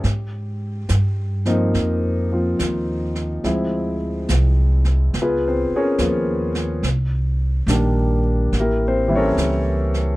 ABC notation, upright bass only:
X:1
M:4/4
L:1/8
Q:"Swing" 1/4=71
K:Ablyd
V:1 name="Upright bass" clef=bass
A,,2 G,,2 F,,2 E,,2 | D,,2 C,,2 _D,, z E,,2 | C,,2 B,,,2 =A,,,2 ^C,,2 |]